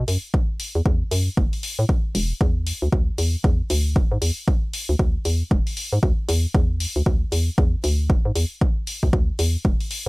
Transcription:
0.08 fm bass F#2, open hi-hat
0.34 kick
0.60 open hi-hat
0.75 fm bass E2
0.86 fm bass E2, kick
1.11 fm bass F#2, open hi-hat
1.37 fm bass F#1, kick
1.53 open hi-hat
1.63 open hi-hat
1.79 fm bass A2
1.89 kick
2.15 fm bass E1, open hi-hat
2.41 fm bass E2, kick
2.67 open hi-hat
2.82 fm bass D2
2.92 fm bass D2, kick
3.18 fm bass E2, open hi-hat
3.44 fm bass E2, kick
3.70 fm bass D2, open hi-hat
3.96 fm bass E1, kick
4.12 fm bass G#2
4.22 fm bass E2, open hi-hat
4.48 kick
4.73 open hi-hat
4.89 fm bass D2
4.99 fm bass D2, kick
5.25 fm bass E2, open hi-hat
5.51 fm bass E1, kick
5.67 open hi-hat
5.77 open hi-hat
5.93 fm bass G#2
6.03 fm bass D2, kick
6.29 fm bass E2, open hi-hat
6.55 fm bass E2, kick
6.80 open hi-hat
6.96 fm bass D2
7.06 fm bass D2, kick
7.32 fm bass E2, open hi-hat
7.58 fm bass E2, kick
7.84 fm bass D2, open hi-hat
8.10 fm bass E1, kick
8.25 fm bass G#2
8.36 fm bass E2, open hi-hat
8.61 kick
8.87 open hi-hat
9.03 fm bass D2, kick
9.13 fm bass D2, kick
9.39 fm bass E2, open hi-hat
9.65 fm bass E1, kick
9.80 open hi-hat
9.91 open hi-hat

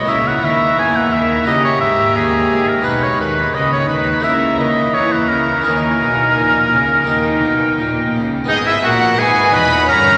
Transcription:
Already playing: oboe D#5
0.05 cello section C#3, harpsichord A#3 E4 A#4, oboe E5
0.09 double bass section C#2, harpsichord C#3, viola section A#3, violin section E4 A#5
0.27 oboe F#5
0.44 double bass section D#2, harpsichord D#3, cello section D#3, oboe E5
0.78 double bass section E2, harpsichord E3, cello section E3, oboe G#5
0.96 oboe F#5
1.12 double bass section D#2, harpsichord D#3, cello section D#3, oboe E5
1.44 double bass section C#2, cello section C#3, harpsichord A#3 D#4 G4, viola section A#3, oboe D#5, violin section A#5
1.48 harpsichord C#3, violin section G4
1.64 oboe C#5
1.80 double bass section G#1, cello section G#2, harpsichord G#2, oboe E5
2.16 double bass section D#2, cello section D#2, harpsichord D#2, oboe G#4
2.51 double bass section G#1, cello section G#2, harpsichord G#2
2.68 oboe A#4
2.81 harpsichord B3 D#4 G#4, oboe B4
2.85 double bass section B1, harpsichord B2, cello section B2, viola section G#3, violin section D#4 B5
3.03 oboe C#5
3.20 double bass section D#2, harpsichord D#3, cello section D#3, oboe B4
3.54 double bass section C#2, harpsichord C#3, cello section C#3, viola section G#3, violin section D#4 B5, oboe D#5
3.73 oboe C#5
3.88 double bass section D#2, harpsichord D#3, cello section D#3, oboe B4
4.20 harpsichord A#3 E4 A#4, oboe E5
4.24 double bass section C#2, harpsichord C#3, cello section C#3, viola section A#3, violin section E4 A#5
4.58 double bass section D#2, harpsichord D#3, cello section D#3, oboe D#5
4.94 double bass section E2, harpsichord E3, cello section E3, viola section A#3, violin section E4 A#5, oboe C#5
5.12 oboe B4
5.29 double bass section C#2, harpsichord C#3, cello section C#3, oboe A#4
5.62 harpsichord A#3 D#4 G#4, violin section D#4, oboe A#4
5.66 double bass section D#2, harpsichord D#3, cello section D#3, viola section A#3, violin section G#5
6.01 double bass section B1, harpsichord B2, cello section B2
6.36 double bass section A#1, harpsichord A#2, cello section A#2
6.73 double bass section C#2, harpsichord C#3, cello section C#3
7.04 harpsichord A#3 D#4 G4, viola section A#3, violin section D#4
7.08 double bass section D#2, harpsichord D#3, cello section D#3, violin section G5
7.43 double bass section B1, harpsichord B2, cello section B2
7.79 double bass section A#1, harpsichord A#2, cello section A#2
8.14 double bass section C#2, cello section C#3, harpsichord C#3
8.44 harpsichord B3 D#4
8.48 double bass section G#1, harpsichord G#2, cello section G#2, viola section B3, oboe D#4, violin section G#4 D#5
8.66 oboe E4, violin section G#4 E5
8.83 double bass section A#1, cello section A#2, harpsichord A#2, oboe F#4, violin section A#4 F#5
9.18 double bass section G#1, harpsichord G#2, cello section G#2, viola section D#4, oboe G#4, violin section B4 G#5
9.52 double bass section E1, cello section E2, harpsichord E2, oboe B4, violin section D#5 B5
9.84 harpsichord C#4 D#4, violin section C#5
9.88 double bass section G1, cello section G2, harpsichord G2, viola section C#4, oboe A#4, violin section A#5

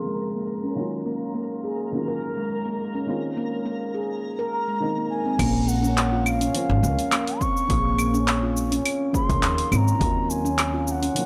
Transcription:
Already playing: felt piano C#3 F3 A#3 C4 G#4 C5, synth texture A#4, bansuri C6
0.06 handpan G#3
0.35 handpan A#3
0.64 handpan C#4
0.75 felt piano D#3 F#3 A#3 C#4 F4
1.06 handpan A#3
1.35 handpan A#3
1.64 handpan G#4
1.91 felt piano D#3 F#3 A#3 C#4 F4
2.08 handpan A#4
2.37 handpan G#3
2.65 handpan A#3
2.95 handpan C#4
3.06 felt piano D#3 G#3 A#3 C4 F4
3.37 handpan A#3
3.66 handpan A#3
3.94 handpan G#4
4.39 handpan A#4
4.52 bansuri A#5
4.68 handpan G#3
4.80 felt piano D#3 G#3 A#3 C4 D#4
4.97 handpan A#3
5.10 bansuri G#5
5.25 handpan C4
5.38 upright bass A#1, felt piano C#3 F3 A#3 C#4 C5, handpan A#3, kick, open hi-hat, crash, claves, shaker
5.68 bansuri F#5, shaker
5.83 handpan C#4, shaker
5.98 clap, open hi-hat, shaker
6.12 handpan F4
6.26 bansuri F5 F#5, claves, shaker
6.41 handpan C#4, open hi-hat, shaker
6.53 felt piano C#3 F3 A#3 C5, open hi-hat, shaker
6.57 felt piano F4
6.69 upright bass G#1
6.83 upright bass C#2, handpan A#3, shaker
6.99 open hi-hat, shaker
7.12 handpan A#3, clap, open hi-hat, claves, shaker
7.27 open hi-hat
7.41 handpan C4, bansuri C#6, kick, shaker
7.57 shaker
7.68 upright bass A#1, felt piano C#3 F3 A#3 C4 G#4, handpan A#3, kick, open hi-hat, shaker
7.99 claves, shaker
8.14 handpan C#4, shaker
8.28 clap, open hi-hat, shaker
8.43 handpan F4
8.57 shaker
8.72 handpan C#4, open hi-hat, shaker
8.85 open hi-hat, claves, shaker
9.12 felt piano C#3 F3 A#3 G#4 C5, handpan A#3, bansuri C6, kick, shaker
9.29 upright bass C#2, kick, open hi-hat, shaker
9.43 upright bass D#2, handpan A#3, clap, open hi-hat, shaker
9.58 open hi-hat
9.71 upright bass G#1, handpan C4, bansuri C6, claves, shaker
9.77 bansuri A#5
9.88 shaker
9.98 upright bass D#2, felt piano D#3 F#3 A#3 C#4, handpan A#3, kick, open hi-hat, shaker
10.03 felt piano F4
10.30 bansuri G#5, shaker
10.45 handpan C#4, shaker
10.59 clap, open hi-hat, claves, shaker
10.74 handpan F4
10.88 bansuri G#5, shaker
10.92 bansuri F#5
11.02 handpan C#4, open hi-hat, shaker
11.14 felt piano D#3 F3 F#3 A#3 C#4, open hi-hat, shaker

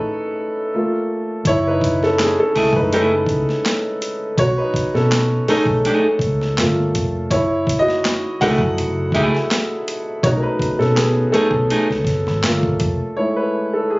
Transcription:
Already playing: upright piano A3 C#4 D#4 E4 G#4 A4 B4 C#5
0.74 upright piano A3 A#3 F4
1.45 fingered electric bass F#1, upright piano E4 C#5, kick, closed hi-hat
1.67 upright piano D#4 B4
1.81 kick, closed hi-hat
2.03 upright piano C#4 A4, snare
2.19 upright piano C#4 G#4, muted clean electric guitar stroke, snare, clap, closed hi-hat
2.40 upright piano C#4 A4
2.55 fingered electric bass C#2, upright piano G#3 A3 E4, clean electric guitar A3 E4 G#4, open hi-hat
2.73 fingered electric bass F#2, upright piano B4, kick
2.78 upright piano D#4
2.93 fingered electric bass F#1, clean electric guitar A3 E4 G#4, upright piano C#4 A4, closed hi-hat
3.27 fingered electric bass C#2, kick, closed hi-hat
3.49 snare
3.66 snare, clap, closed hi-hat
4.02 closed hi-hat
4.38 fingered electric bass B1, upright piano F#4 C#5, kick, closed hi-hat
4.58 upright piano D#4 B4
4.74 muted fingered electric bass stroke, kick, closed hi-hat
4.95 fingered electric bass B2, upright piano C#4 A4, snare
5.12 muted clean electric guitar stroke, snare, clap, closed hi-hat
5.48 clean electric guitar A3 D#4 G#4, upright piano A3 C#4 D#4 G#4 A4, muted fingered electric bass stroke, open hi-hat
5.66 fingered electric bass B1, kick
5.85 clean electric guitar A3 D#4 G#4, closed hi-hat
6.19 fingered electric bass C#2, kick, closed hi-hat
6.41 snare
6.58 fingered electric bass G1, upright piano A3 A#3 F4, snare, clap, closed hi-hat
6.95 fingered electric bass F1, kick, closed hi-hat
7.31 fingered electric bass F#1, upright piano E4 C#5, kick, closed hi-hat
7.67 kick, closed hi-hat
7.79 upright piano F#4 D#5
7.88 snare
8.05 muted clean electric guitar stroke, snare, clap, closed hi-hat
8.41 fingered electric bass C#2, upright piano F#3 A3 E4 A4 F#5, clean electric guitar A3 E4 G#4, open hi-hat
8.58 fingered electric bass F#2, kick
8.78 fingered electric bass F#1, muted clean electric guitar stroke, closed hi-hat
9.12 fingered electric bass C#2, clean electric guitar A3 E4 G#4, upright piano G#4 E5, kick, closed hi-hat
9.35 snare
9.51 snare, clap, closed hi-hat
9.88 closed hi-hat
10.23 fingered electric bass B1, upright piano F#3 A3 C#4 D#4 F#4 C#5, kick, closed hi-hat
10.36 upright piano A#4
10.43 upright piano D#4 B4
10.59 muted fingered electric bass stroke, kick, closed hi-hat
10.79 fingered electric bass B2, upright piano C#4 A4, snare
10.95 upright piano B3 G#4, muted clean electric guitar stroke, snare, clap, closed hi-hat
11.32 clean electric guitar A3 D#4 G#4, upright piano C#4 A4, muted fingered electric bass stroke, closed hi-hat
11.51 fingered electric bass B1, kick
11.70 clean electric guitar A3 D#4 G#4, closed hi-hat
11.90 fingered electric bass C#2, snare
12.05 fingered electric bass F#1, kick, snare, closed hi-hat
12.27 fingered electric bass G#1, snare
12.44 fingered electric bass G1, upright piano A3 A#3 F4, snare, clap, closed hi-hat
12.63 kick
12.80 fingered electric bass F1, kick, closed hi-hat
13.17 upright piano G#3 A3 E4 C#5
13.36 upright piano B4
13.73 upright piano A4
13.90 upright piano G#4

